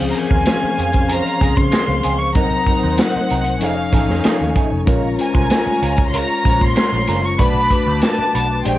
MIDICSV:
0, 0, Header, 1, 9, 480
1, 0, Start_track
1, 0, Key_signature, -5, "major"
1, 0, Tempo, 630252
1, 1792, Time_signature, 4, 2, 24, 8
1, 6691, End_track
2, 0, Start_track
2, 0, Title_t, "Violin section"
2, 0, Program_c, 0, 48
2, 74, Note_on_c, 0, 82, 64
2, 120, Note_off_c, 0, 82, 0
2, 124, Note_on_c, 0, 80, 97
2, 838, Note_off_c, 0, 80, 0
2, 843, Note_on_c, 0, 82, 95
2, 1197, Note_off_c, 0, 82, 0
2, 1199, Note_on_c, 0, 84, 94
2, 1676, Note_off_c, 0, 84, 0
2, 1676, Note_on_c, 0, 85, 90
2, 1794, Note_off_c, 0, 85, 0
2, 1801, Note_on_c, 0, 82, 97
2, 2246, Note_off_c, 0, 82, 0
2, 2281, Note_on_c, 0, 78, 99
2, 2756, Note_off_c, 0, 78, 0
2, 2765, Note_on_c, 0, 77, 81
2, 3479, Note_off_c, 0, 77, 0
2, 3968, Note_on_c, 0, 80, 87
2, 4596, Note_off_c, 0, 80, 0
2, 4637, Note_on_c, 0, 84, 75
2, 4681, Note_off_c, 0, 84, 0
2, 4690, Note_on_c, 0, 82, 103
2, 5040, Note_off_c, 0, 82, 0
2, 5050, Note_on_c, 0, 84, 96
2, 5520, Note_off_c, 0, 84, 0
2, 5522, Note_on_c, 0, 85, 90
2, 5636, Note_off_c, 0, 85, 0
2, 5638, Note_on_c, 0, 83, 107
2, 6114, Note_off_c, 0, 83, 0
2, 6125, Note_on_c, 0, 81, 106
2, 6567, Note_off_c, 0, 81, 0
2, 6610, Note_on_c, 0, 79, 85
2, 6691, Note_off_c, 0, 79, 0
2, 6691, End_track
3, 0, Start_track
3, 0, Title_t, "String section"
3, 0, Program_c, 1, 48
3, 0, Note_on_c, 1, 61, 76
3, 0, Note_on_c, 1, 72, 84
3, 0, Note_on_c, 1, 77, 99
3, 1761, Note_off_c, 1, 61, 0
3, 1761, Note_off_c, 1, 72, 0
3, 1763, Note_off_c, 1, 77, 0
3, 1792, Note_on_c, 1, 78, 88
3, 1793, Note_on_c, 1, 63, 88
3, 1794, Note_on_c, 1, 72, 86
3, 2733, Note_off_c, 1, 63, 0
3, 2733, Note_off_c, 1, 78, 0
3, 2734, Note_off_c, 1, 72, 0
3, 2750, Note_on_c, 1, 80, 76
3, 2753, Note_on_c, 1, 63, 70
3, 2753, Note_on_c, 1, 73, 75
3, 3692, Note_off_c, 1, 80, 0
3, 3693, Note_off_c, 1, 63, 0
3, 3693, Note_off_c, 1, 73, 0
3, 3716, Note_on_c, 1, 73, 82
3, 3717, Note_on_c, 1, 82, 99
3, 3718, Note_on_c, 1, 65, 86
3, 5602, Note_off_c, 1, 73, 0
3, 5603, Note_off_c, 1, 65, 0
3, 5603, Note_off_c, 1, 82, 0
3, 5631, Note_on_c, 1, 71, 86
3, 5634, Note_on_c, 1, 86, 89
3, 5635, Note_on_c, 1, 81, 80
3, 6570, Note_off_c, 1, 71, 0
3, 6572, Note_off_c, 1, 81, 0
3, 6572, Note_off_c, 1, 86, 0
3, 6583, Note_on_c, 1, 79, 73
3, 6584, Note_on_c, 1, 68, 77
3, 6585, Note_on_c, 1, 84, 75
3, 6691, Note_off_c, 1, 68, 0
3, 6691, Note_off_c, 1, 79, 0
3, 6691, Note_off_c, 1, 84, 0
3, 6691, End_track
4, 0, Start_track
4, 0, Title_t, "Clean electric guitar"
4, 0, Program_c, 2, 27
4, 228, Note_on_c, 2, 70, 46
4, 233, Note_on_c, 2, 65, 49
4, 235, Note_on_c, 2, 60, 43
4, 237, Note_on_c, 2, 56, 42
4, 339, Note_off_c, 2, 56, 0
4, 342, Note_off_c, 2, 60, 0
4, 344, Note_off_c, 2, 65, 0
4, 349, Note_off_c, 2, 70, 0
4, 590, Note_on_c, 2, 56, 47
4, 595, Note_on_c, 2, 60, 56
4, 599, Note_on_c, 2, 65, 57
4, 600, Note_on_c, 2, 68, 53
4, 702, Note_off_c, 2, 68, 0
4, 705, Note_off_c, 2, 65, 0
4, 708, Note_off_c, 2, 60, 0
4, 710, Note_off_c, 2, 56, 0
4, 826, Note_on_c, 2, 56, 79
4, 829, Note_on_c, 2, 60, 92
4, 832, Note_on_c, 2, 65, 92
4, 834, Note_on_c, 2, 68, 83
4, 943, Note_off_c, 2, 68, 0
4, 947, Note_off_c, 2, 65, 0
4, 949, Note_off_c, 2, 60, 0
4, 981, Note_off_c, 2, 56, 0
4, 1070, Note_on_c, 2, 56, 57
4, 1074, Note_on_c, 2, 60, 54
4, 1077, Note_on_c, 2, 65, 63
4, 1078, Note_on_c, 2, 68, 63
4, 1182, Note_off_c, 2, 68, 0
4, 1183, Note_off_c, 2, 65, 0
4, 1188, Note_off_c, 2, 60, 0
4, 1190, Note_off_c, 2, 56, 0
4, 1307, Note_on_c, 2, 56, 74
4, 1310, Note_on_c, 2, 60, 75
4, 1313, Note_on_c, 2, 65, 84
4, 1315, Note_on_c, 2, 68, 84
4, 1421, Note_off_c, 2, 68, 0
4, 1428, Note_off_c, 2, 65, 0
4, 1429, Note_off_c, 2, 60, 0
4, 1461, Note_off_c, 2, 56, 0
4, 1551, Note_on_c, 2, 56, 56
4, 1554, Note_on_c, 2, 60, 55
4, 1557, Note_on_c, 2, 65, 58
4, 1558, Note_on_c, 2, 68, 58
4, 1666, Note_off_c, 2, 68, 0
4, 1668, Note_off_c, 2, 65, 0
4, 1670, Note_off_c, 2, 56, 0
4, 1672, Note_off_c, 2, 60, 0
4, 1795, Note_on_c, 2, 54, 68
4, 1797, Note_on_c, 2, 60, 67
4, 1803, Note_on_c, 2, 63, 75
4, 1804, Note_on_c, 2, 70, 77
4, 1946, Note_off_c, 2, 54, 0
4, 1946, Note_off_c, 2, 60, 0
4, 1949, Note_off_c, 2, 63, 0
4, 1950, Note_off_c, 2, 70, 0
4, 2158, Note_on_c, 2, 72, 53
4, 2159, Note_on_c, 2, 63, 52
4, 2162, Note_on_c, 2, 60, 52
4, 2166, Note_on_c, 2, 54, 42
4, 2269, Note_off_c, 2, 54, 0
4, 2273, Note_off_c, 2, 60, 0
4, 2274, Note_off_c, 2, 63, 0
4, 2274, Note_off_c, 2, 72, 0
4, 2516, Note_on_c, 2, 54, 57
4, 2520, Note_on_c, 2, 60, 59
4, 2521, Note_on_c, 2, 63, 56
4, 2525, Note_on_c, 2, 70, 60
4, 2628, Note_off_c, 2, 70, 0
4, 2629, Note_off_c, 2, 63, 0
4, 2633, Note_off_c, 2, 54, 0
4, 2633, Note_off_c, 2, 60, 0
4, 2754, Note_on_c, 2, 53, 80
4, 2759, Note_on_c, 2, 57, 78
4, 2762, Note_on_c, 2, 63, 93
4, 2765, Note_on_c, 2, 68, 77
4, 2870, Note_off_c, 2, 68, 0
4, 2872, Note_off_c, 2, 63, 0
4, 2874, Note_off_c, 2, 57, 0
4, 2905, Note_off_c, 2, 53, 0
4, 2999, Note_on_c, 2, 53, 52
4, 3002, Note_on_c, 2, 57, 57
4, 3003, Note_on_c, 2, 63, 62
4, 3006, Note_on_c, 2, 68, 61
4, 3108, Note_off_c, 2, 68, 0
4, 3111, Note_off_c, 2, 63, 0
4, 3114, Note_off_c, 2, 53, 0
4, 3115, Note_off_c, 2, 57, 0
4, 3235, Note_on_c, 2, 53, 71
4, 3237, Note_on_c, 2, 57, 83
4, 3240, Note_on_c, 2, 63, 80
4, 3242, Note_on_c, 2, 68, 80
4, 3345, Note_off_c, 2, 68, 0
4, 3349, Note_off_c, 2, 63, 0
4, 3351, Note_off_c, 2, 57, 0
4, 3385, Note_off_c, 2, 53, 0
4, 3472, Note_on_c, 2, 53, 57
4, 3477, Note_on_c, 2, 57, 55
4, 3479, Note_on_c, 2, 63, 59
4, 3480, Note_on_c, 2, 68, 56
4, 3583, Note_off_c, 2, 68, 0
4, 3589, Note_off_c, 2, 57, 0
4, 3589, Note_off_c, 2, 63, 0
4, 3591, Note_off_c, 2, 53, 0
4, 3709, Note_on_c, 2, 56, 70
4, 3713, Note_on_c, 2, 61, 76
4, 3716, Note_on_c, 2, 65, 71
4, 3719, Note_on_c, 2, 70, 79
4, 3862, Note_off_c, 2, 56, 0
4, 3864, Note_off_c, 2, 61, 0
4, 3865, Note_off_c, 2, 65, 0
4, 3867, Note_off_c, 2, 70, 0
4, 4065, Note_on_c, 2, 72, 58
4, 4070, Note_on_c, 2, 65, 47
4, 4073, Note_on_c, 2, 61, 52
4, 4074, Note_on_c, 2, 56, 41
4, 4181, Note_off_c, 2, 56, 0
4, 4183, Note_off_c, 2, 61, 0
4, 4184, Note_off_c, 2, 65, 0
4, 4187, Note_off_c, 2, 72, 0
4, 4425, Note_on_c, 2, 56, 52
4, 4430, Note_on_c, 2, 61, 56
4, 4433, Note_on_c, 2, 65, 58
4, 4436, Note_on_c, 2, 70, 63
4, 4540, Note_off_c, 2, 70, 0
4, 4544, Note_off_c, 2, 65, 0
4, 4545, Note_off_c, 2, 61, 0
4, 4547, Note_off_c, 2, 56, 0
4, 4671, Note_on_c, 2, 56, 73
4, 4675, Note_on_c, 2, 61, 75
4, 4677, Note_on_c, 2, 65, 83
4, 4680, Note_on_c, 2, 70, 92
4, 4783, Note_off_c, 2, 70, 0
4, 4785, Note_off_c, 2, 65, 0
4, 4791, Note_off_c, 2, 61, 0
4, 4823, Note_off_c, 2, 56, 0
4, 4908, Note_on_c, 2, 56, 57
4, 4910, Note_on_c, 2, 61, 58
4, 4914, Note_on_c, 2, 65, 63
4, 4918, Note_on_c, 2, 70, 59
4, 5014, Note_off_c, 2, 70, 0
4, 5018, Note_off_c, 2, 65, 0
4, 5020, Note_off_c, 2, 61, 0
4, 5028, Note_off_c, 2, 56, 0
4, 5143, Note_on_c, 2, 56, 66
4, 5147, Note_on_c, 2, 61, 72
4, 5151, Note_on_c, 2, 65, 77
4, 5153, Note_on_c, 2, 70, 74
4, 5260, Note_off_c, 2, 70, 0
4, 5264, Note_off_c, 2, 65, 0
4, 5265, Note_off_c, 2, 61, 0
4, 5299, Note_off_c, 2, 56, 0
4, 5390, Note_on_c, 2, 56, 55
4, 5393, Note_on_c, 2, 61, 62
4, 5397, Note_on_c, 2, 65, 57
4, 5397, Note_on_c, 2, 70, 68
4, 5500, Note_off_c, 2, 70, 0
4, 5505, Note_off_c, 2, 65, 0
4, 5507, Note_off_c, 2, 61, 0
4, 5509, Note_off_c, 2, 56, 0
4, 5629, Note_on_c, 2, 57, 71
4, 5631, Note_on_c, 2, 62, 72
4, 5636, Note_on_c, 2, 66, 73
4, 5638, Note_on_c, 2, 71, 77
4, 5781, Note_off_c, 2, 57, 0
4, 5782, Note_off_c, 2, 62, 0
4, 5785, Note_off_c, 2, 66, 0
4, 5785, Note_off_c, 2, 71, 0
4, 5990, Note_on_c, 2, 73, 52
4, 5993, Note_on_c, 2, 66, 46
4, 5999, Note_on_c, 2, 62, 49
4, 6000, Note_on_c, 2, 57, 42
4, 6104, Note_off_c, 2, 57, 0
4, 6108, Note_off_c, 2, 62, 0
4, 6109, Note_off_c, 2, 73, 0
4, 6110, Note_off_c, 2, 66, 0
4, 6349, Note_on_c, 2, 57, 49
4, 6353, Note_on_c, 2, 62, 60
4, 6354, Note_on_c, 2, 66, 63
4, 6358, Note_on_c, 2, 71, 70
4, 6463, Note_off_c, 2, 71, 0
4, 6466, Note_off_c, 2, 66, 0
4, 6468, Note_off_c, 2, 57, 0
4, 6470, Note_off_c, 2, 62, 0
4, 6589, Note_on_c, 2, 56, 89
4, 6594, Note_on_c, 2, 62, 76
4, 6595, Note_on_c, 2, 67, 93
4, 6598, Note_on_c, 2, 72, 89
4, 6691, Note_off_c, 2, 56, 0
4, 6691, Note_off_c, 2, 62, 0
4, 6691, Note_off_c, 2, 67, 0
4, 6691, Note_off_c, 2, 72, 0
4, 6691, End_track
5, 0, Start_track
5, 0, Title_t, "Tine electric piano"
5, 0, Program_c, 3, 4
5, 0, Note_on_c, 3, 53, 89
5, 0, Note_on_c, 3, 60, 79
5, 0, Note_on_c, 3, 61, 82
5, 0, Note_on_c, 3, 68, 93
5, 14, Control_c, 3, 64, 127
5, 79, Note_off_c, 3, 53, 0
5, 81, Note_off_c, 3, 60, 0
5, 83, Note_off_c, 3, 61, 0
5, 87, Note_off_c, 3, 68, 0
5, 118, Note_on_c, 3, 52, 47
5, 122, Note_on_c, 3, 60, 60
5, 126, Note_on_c, 3, 61, 59
5, 131, Note_on_c, 3, 70, 74
5, 165, Note_off_c, 3, 52, 0
5, 168, Note_on_c, 3, 53, 65
5, 943, Note_off_c, 3, 60, 0
5, 945, Note_off_c, 3, 61, 0
5, 948, Note_off_c, 3, 70, 0
5, 966, Note_off_c, 3, 53, 0
5, 1073, Note_on_c, 3, 53, 69
5, 1082, Note_on_c, 3, 60, 66
5, 1085, Note_on_c, 3, 61, 62
5, 1088, Note_on_c, 3, 68, 78
5, 1692, Note_off_c, 3, 53, 0
5, 1697, Note_off_c, 3, 60, 0
5, 1698, Note_off_c, 3, 61, 0
5, 1700, Note_off_c, 3, 68, 0
5, 1790, Note_on_c, 3, 54, 78
5, 1794, Note_on_c, 3, 60, 75
5, 1800, Note_on_c, 3, 63, 70
5, 1801, Control_c, 3, 64, 0
5, 1803, Note_on_c, 3, 70, 81
5, 1935, Control_c, 3, 64, 127
5, 1997, Note_off_c, 3, 54, 0
5, 2000, Note_off_c, 3, 60, 0
5, 2002, Note_off_c, 3, 63, 0
5, 2004, Note_off_c, 3, 70, 0
5, 2030, Note_on_c, 3, 54, 69
5, 2034, Note_on_c, 3, 60, 57
5, 2041, Note_on_c, 3, 63, 62
5, 2044, Note_on_c, 3, 70, 76
5, 2747, Note_on_c, 3, 53, 74
5, 2748, Note_off_c, 3, 63, 0
5, 2751, Note_off_c, 3, 54, 0
5, 2752, Note_on_c, 3, 61, 63
5, 2753, Note_off_c, 3, 60, 0
5, 2757, Note_on_c, 3, 63, 70
5, 2758, Note_off_c, 3, 70, 0
5, 2762, Control_c, 3, 64, 0
5, 2765, Note_on_c, 3, 69, 72
5, 2909, Control_c, 3, 64, 127
5, 2956, Note_off_c, 3, 53, 0
5, 2959, Note_off_c, 3, 61, 0
5, 2961, Note_off_c, 3, 63, 0
5, 2965, Note_off_c, 3, 69, 0
5, 2985, Note_on_c, 3, 53, 70
5, 2988, Note_on_c, 3, 61, 65
5, 2993, Note_on_c, 3, 63, 65
5, 2997, Note_on_c, 3, 69, 78
5, 3608, Note_off_c, 3, 53, 0
5, 3609, Note_off_c, 3, 61, 0
5, 3612, Note_off_c, 3, 63, 0
5, 3614, Note_off_c, 3, 69, 0
5, 3702, Note_on_c, 3, 56, 91
5, 3704, Note_on_c, 3, 61, 89
5, 3709, Note_on_c, 3, 65, 87
5, 3715, Note_on_c, 3, 70, 95
5, 3721, Control_c, 3, 64, 0
5, 3862, Control_c, 3, 64, 127
5, 3913, Note_off_c, 3, 56, 0
5, 3914, Note_off_c, 3, 61, 0
5, 3917, Note_off_c, 3, 65, 0
5, 3920, Note_off_c, 3, 70, 0
5, 3943, Note_on_c, 3, 56, 63
5, 3945, Note_on_c, 3, 61, 66
5, 3951, Note_on_c, 3, 65, 68
5, 3956, Note_on_c, 3, 72, 70
5, 4773, Note_off_c, 3, 56, 0
5, 4774, Note_off_c, 3, 61, 0
5, 4777, Note_off_c, 3, 65, 0
5, 4779, Note_off_c, 3, 72, 0
5, 4904, Note_on_c, 3, 56, 70
5, 4911, Note_on_c, 3, 61, 69
5, 4915, Note_on_c, 3, 65, 60
5, 4921, Note_on_c, 3, 72, 66
5, 4965, Note_off_c, 3, 72, 0
5, 4966, Note_on_c, 3, 73, 78
5, 5526, Note_off_c, 3, 56, 0
5, 5530, Note_off_c, 3, 61, 0
5, 5532, Note_off_c, 3, 65, 0
5, 5558, Note_off_c, 3, 73, 0
5, 5622, Note_on_c, 3, 57, 78
5, 5629, Note_on_c, 3, 62, 64
5, 5635, Note_on_c, 3, 66, 70
5, 5638, Note_on_c, 3, 71, 82
5, 5641, Control_c, 3, 64, 0
5, 5790, Control_c, 3, 64, 127
5, 5833, Note_off_c, 3, 57, 0
5, 5836, Note_off_c, 3, 62, 0
5, 5839, Note_off_c, 3, 66, 0
5, 5840, Note_off_c, 3, 71, 0
5, 5864, Note_on_c, 3, 57, 69
5, 5871, Note_on_c, 3, 62, 62
5, 5875, Note_on_c, 3, 66, 64
5, 5880, Note_on_c, 3, 71, 74
5, 6580, Note_off_c, 3, 62, 0
5, 6586, Note_off_c, 3, 57, 0
5, 6587, Note_on_c, 3, 56, 72
5, 6589, Note_on_c, 3, 62, 66
5, 6592, Note_off_c, 3, 66, 0
5, 6594, Note_off_c, 3, 71, 0
5, 6595, Note_on_c, 3, 67, 61
5, 6598, Note_on_c, 3, 72, 71
5, 6601, Control_c, 3, 64, 0
5, 6691, Note_off_c, 3, 56, 0
5, 6691, Note_off_c, 3, 62, 0
5, 6691, Note_off_c, 3, 67, 0
5, 6691, Note_off_c, 3, 72, 0
5, 6691, End_track
6, 0, Start_track
6, 0, Title_t, "Fingered electric bass"
6, 0, Program_c, 4, 33
6, 0, Note_on_c, 4, 37, 86
6, 83, Note_off_c, 4, 37, 0
6, 235, Note_on_c, 4, 39, 86
6, 339, Note_off_c, 4, 39, 0
6, 599, Note_on_c, 4, 41, 75
6, 911, Note_off_c, 4, 41, 0
6, 1074, Note_on_c, 4, 37, 86
6, 1178, Note_off_c, 4, 37, 0
6, 1198, Note_on_c, 4, 49, 87
6, 1301, Note_off_c, 4, 49, 0
6, 1431, Note_on_c, 4, 37, 81
6, 1537, Note_off_c, 4, 37, 0
6, 1559, Note_on_c, 4, 37, 82
6, 1791, Note_off_c, 4, 37, 0
6, 1791, Note_on_c, 4, 36, 93
6, 2002, Note_off_c, 4, 36, 0
6, 2162, Note_on_c, 4, 39, 86
6, 2263, Note_off_c, 4, 39, 0
6, 2522, Note_on_c, 4, 36, 81
6, 2758, Note_off_c, 4, 36, 0
6, 2758, Note_on_c, 4, 29, 91
6, 2966, Note_off_c, 4, 29, 0
6, 2993, Note_on_c, 4, 33, 96
6, 3098, Note_off_c, 4, 33, 0
6, 3116, Note_on_c, 4, 41, 93
6, 3220, Note_off_c, 4, 41, 0
6, 3360, Note_on_c, 4, 39, 74
6, 3461, Note_off_c, 4, 39, 0
6, 3599, Note_on_c, 4, 29, 78
6, 3701, Note_off_c, 4, 29, 0
6, 3712, Note_on_c, 4, 34, 90
6, 3922, Note_off_c, 4, 34, 0
6, 4072, Note_on_c, 4, 36, 80
6, 4177, Note_off_c, 4, 36, 0
6, 4434, Note_on_c, 4, 37, 85
6, 4748, Note_off_c, 4, 37, 0
6, 4914, Note_on_c, 4, 34, 100
6, 5017, Note_off_c, 4, 34, 0
6, 5035, Note_on_c, 4, 46, 106
6, 5138, Note_off_c, 4, 46, 0
6, 5272, Note_on_c, 4, 34, 75
6, 5377, Note_off_c, 4, 34, 0
6, 5393, Note_on_c, 4, 30, 76
6, 5602, Note_off_c, 4, 30, 0
6, 5632, Note_on_c, 4, 35, 95
6, 5841, Note_off_c, 4, 35, 0
6, 5993, Note_on_c, 4, 38, 94
6, 6096, Note_off_c, 4, 38, 0
6, 6357, Note_on_c, 4, 35, 87
6, 6564, Note_off_c, 4, 35, 0
6, 6596, Note_on_c, 4, 34, 85
6, 6691, Note_off_c, 4, 34, 0
6, 6691, End_track
7, 0, Start_track
7, 0, Title_t, "Muted clean electric guitar strokes"
7, 111, Note_on_c, 9, 29, 34
7, 187, Note_off_c, 9, 29, 0
7, 712, Note_on_c, 9, 29, 33
7, 788, Note_off_c, 9, 29, 0
7, 1431, Note_on_c, 9, 29, 34
7, 1507, Note_off_c, 9, 29, 0
7, 2038, Note_on_c, 9, 29, 29
7, 2115, Note_off_c, 9, 29, 0
7, 2637, Note_on_c, 9, 29, 36
7, 2713, Note_off_c, 9, 29, 0
7, 2879, Note_on_c, 9, 29, 41
7, 2955, Note_off_c, 9, 29, 0
7, 3117, Note_on_c, 9, 29, 45
7, 3193, Note_off_c, 9, 29, 0
7, 3354, Note_on_c, 9, 29, 39
7, 3430, Note_off_c, 9, 29, 0
7, 3950, Note_on_c, 9, 29, 27
7, 4026, Note_off_c, 9, 29, 0
7, 4190, Note_on_c, 9, 29, 32
7, 4266, Note_off_c, 9, 29, 0
7, 4549, Note_on_c, 9, 29, 35
7, 4625, Note_off_c, 9, 29, 0
7, 4793, Note_on_c, 9, 29, 31
7, 4869, Note_off_c, 9, 29, 0
7, 5024, Note_on_c, 9, 29, 40
7, 5100, Note_off_c, 9, 29, 0
7, 5269, Note_on_c, 9, 29, 35
7, 5345, Note_off_c, 9, 29, 0
7, 5509, Note_on_c, 9, 29, 39
7, 5586, Note_off_c, 9, 29, 0
7, 5875, Note_on_c, 9, 29, 34
7, 5952, Note_off_c, 9, 29, 0
7, 6472, Note_on_c, 9, 29, 40
7, 6549, Note_off_c, 9, 29, 0
7, 6691, End_track
8, 0, Start_track
8, 0, Title_t, "Muted fingered electric bass strokes"
8, 480, Note_on_c, 9, 29, 45
8, 556, Note_off_c, 9, 29, 0
8, 2405, Note_on_c, 9, 29, 46
8, 2482, Note_off_c, 9, 29, 0
8, 3239, Note_on_c, 9, 29, 45
8, 3315, Note_off_c, 9, 29, 0
8, 4315, Note_on_c, 9, 29, 45
8, 4391, Note_off_c, 9, 29, 0
8, 6234, Note_on_c, 9, 29, 45
8, 6311, Note_off_c, 9, 29, 0
8, 6691, End_track
9, 0, Start_track
9, 0, Title_t, "Drums"
9, 112, Note_on_c, 9, 42, 49
9, 188, Note_off_c, 9, 42, 0
9, 233, Note_on_c, 9, 36, 92
9, 310, Note_off_c, 9, 36, 0
9, 347, Note_on_c, 9, 42, 93
9, 358, Note_on_c, 9, 38, 108
9, 423, Note_off_c, 9, 42, 0
9, 434, Note_off_c, 9, 38, 0
9, 602, Note_on_c, 9, 42, 67
9, 678, Note_off_c, 9, 42, 0
9, 708, Note_on_c, 9, 42, 44
9, 718, Note_on_c, 9, 36, 84
9, 784, Note_off_c, 9, 42, 0
9, 794, Note_off_c, 9, 36, 0
9, 831, Note_on_c, 9, 42, 82
9, 907, Note_off_c, 9, 42, 0
9, 960, Note_on_c, 9, 42, 46
9, 1036, Note_off_c, 9, 42, 0
9, 1074, Note_on_c, 9, 36, 94
9, 1084, Note_on_c, 9, 42, 76
9, 1151, Note_off_c, 9, 36, 0
9, 1160, Note_off_c, 9, 42, 0
9, 1196, Note_on_c, 9, 36, 91
9, 1272, Note_off_c, 9, 36, 0
9, 1309, Note_on_c, 9, 42, 80
9, 1319, Note_on_c, 9, 38, 96
9, 1385, Note_off_c, 9, 42, 0
9, 1396, Note_off_c, 9, 38, 0
9, 1548, Note_on_c, 9, 42, 86
9, 1624, Note_off_c, 9, 42, 0
9, 1787, Note_on_c, 9, 42, 74
9, 1792, Note_on_c, 9, 36, 106
9, 1863, Note_off_c, 9, 42, 0
9, 1868, Note_off_c, 9, 36, 0
9, 2029, Note_on_c, 9, 42, 52
9, 2030, Note_on_c, 9, 36, 80
9, 2105, Note_off_c, 9, 42, 0
9, 2106, Note_off_c, 9, 36, 0
9, 2266, Note_on_c, 9, 42, 92
9, 2277, Note_on_c, 9, 38, 98
9, 2342, Note_off_c, 9, 42, 0
9, 2353, Note_off_c, 9, 38, 0
9, 2514, Note_on_c, 9, 42, 68
9, 2590, Note_off_c, 9, 42, 0
9, 2621, Note_on_c, 9, 42, 44
9, 2697, Note_off_c, 9, 42, 0
9, 2748, Note_on_c, 9, 42, 77
9, 2824, Note_off_c, 9, 42, 0
9, 2992, Note_on_c, 9, 36, 97
9, 2995, Note_on_c, 9, 42, 78
9, 3068, Note_off_c, 9, 36, 0
9, 3071, Note_off_c, 9, 42, 0
9, 3121, Note_on_c, 9, 38, 37
9, 3197, Note_off_c, 9, 38, 0
9, 3227, Note_on_c, 9, 42, 83
9, 3237, Note_on_c, 9, 38, 104
9, 3303, Note_off_c, 9, 42, 0
9, 3314, Note_off_c, 9, 38, 0
9, 3470, Note_on_c, 9, 42, 80
9, 3472, Note_on_c, 9, 36, 91
9, 3547, Note_off_c, 9, 42, 0
9, 3548, Note_off_c, 9, 36, 0
9, 3709, Note_on_c, 9, 42, 74
9, 3712, Note_on_c, 9, 36, 104
9, 3786, Note_off_c, 9, 42, 0
9, 3788, Note_off_c, 9, 36, 0
9, 3950, Note_on_c, 9, 42, 57
9, 4026, Note_off_c, 9, 42, 0
9, 4073, Note_on_c, 9, 36, 96
9, 4149, Note_off_c, 9, 36, 0
9, 4187, Note_on_c, 9, 42, 96
9, 4198, Note_on_c, 9, 38, 106
9, 4263, Note_off_c, 9, 42, 0
9, 4274, Note_off_c, 9, 38, 0
9, 4436, Note_on_c, 9, 42, 77
9, 4512, Note_off_c, 9, 42, 0
9, 4541, Note_on_c, 9, 42, 44
9, 4555, Note_on_c, 9, 36, 94
9, 4617, Note_off_c, 9, 42, 0
9, 4631, Note_off_c, 9, 36, 0
9, 4673, Note_on_c, 9, 42, 73
9, 4749, Note_off_c, 9, 42, 0
9, 4913, Note_on_c, 9, 36, 90
9, 4921, Note_on_c, 9, 42, 69
9, 4989, Note_off_c, 9, 36, 0
9, 4997, Note_off_c, 9, 42, 0
9, 5035, Note_on_c, 9, 36, 87
9, 5111, Note_off_c, 9, 36, 0
9, 5145, Note_on_c, 9, 42, 82
9, 5156, Note_on_c, 9, 38, 105
9, 5222, Note_off_c, 9, 42, 0
9, 5232, Note_off_c, 9, 38, 0
9, 5384, Note_on_c, 9, 42, 78
9, 5392, Note_on_c, 9, 38, 34
9, 5461, Note_off_c, 9, 42, 0
9, 5469, Note_off_c, 9, 38, 0
9, 5625, Note_on_c, 9, 42, 76
9, 5629, Note_on_c, 9, 36, 109
9, 5701, Note_off_c, 9, 42, 0
9, 5705, Note_off_c, 9, 36, 0
9, 5866, Note_on_c, 9, 42, 58
9, 5867, Note_on_c, 9, 36, 70
9, 5943, Note_off_c, 9, 36, 0
9, 5943, Note_off_c, 9, 42, 0
9, 6104, Note_on_c, 9, 42, 92
9, 6115, Note_on_c, 9, 38, 101
9, 6180, Note_off_c, 9, 42, 0
9, 6191, Note_off_c, 9, 38, 0
9, 6358, Note_on_c, 9, 42, 78
9, 6434, Note_off_c, 9, 42, 0
9, 6590, Note_on_c, 9, 42, 80
9, 6666, Note_off_c, 9, 42, 0
9, 6691, End_track
0, 0, End_of_file